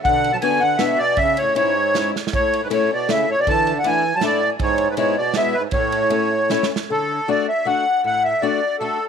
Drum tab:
RD |x--x--x-----x-----|x--x--x-----x-----|x--x--x-----x-----|x--x--x-----x-----|
SD |------------o-----|------------o--o-o|------------o-----|------------o-----|
BD |o-----------------|o-----------------|o-----------------|o-----------------|

RD |x--x--x-----x-----|x--x--x-----------|------------------|------------------|
SD |------------o-----|------------o-o-o-|------------------|------------------|
BD |o-----------------|o-----------------|------------------|------------------|